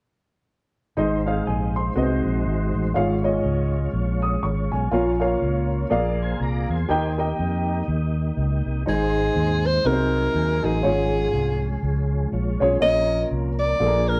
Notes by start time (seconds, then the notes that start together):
0.97 G#1 G#2 G#3 C4 D#4 G#4 C5 D#5
1.26 D#4 G#4 C5 F5
1.47 A#1 G4 D#5 G#5
1.76 D#4 C5 C6
1.96 C2 C3 G#3 D#4 F#4 G#4 B4 C5 D#5
2.03 C5
2.25 A#1
2.46 G#1
2.74 A1
2.94 G#1 G#2 G#3 C#4 E4 F4 G#4 C#5 F5
3.01 F4
3.23 F4 G#4 C#5 D#5
3.45 C#2
3.94 A#1
4.22 D#6
4.43 G#1 C#6
4.72 B1 G#5
4.91 A#1 A#2 A#3 C#4 F4 A#4 C#5 F5
5.20 F4 A#4 C#5 F5
5.42 C#2
5.90 A#1 A#2 A#3 F4 G#4 A#4 C#5 D5 F5
5.99 D5
6.22 C5 G#5
6.40 C2 D5 A#5
6.69 E2 C5 G#5
6.89 D#2 D#3 A#3 D#4 F#4 G4 A#4 D#5 G5
6.96 G4
7.18 G4 A#4 D#5 G5
7.39 F2
7.88 D#2
8.37 C#2
8.66 C2
8.86 G#1 G#2 G#3 C4 D#4 G#4 A#4 C5 D#5
8.93 C5
9.36 D#2
9.66 C5
9.85 C2 C3 F#3 B3 D#4 F#4 G#4 A#4
9.92 C4 C5
10.34 D#2
10.63 A1 D#4 F#4 G#4 A#4
10.83 G#1 G#2 F3 G#3 C#4 F4 G#4 C#5
11.34 C2
11.83 C#2
12.32 A#1 F4 C#5
12.60 B1 C4 C#4 F4 G#4 C#5
12.80 A#1 A#2 F3 A#3 C#4 F4 A#4 C#5 D#5
13.31 C2
13.59 D5
13.79 A#1 A#2 F3 A#3 D4 F4 G#4 A4
13.86 A#4
14.09 A#4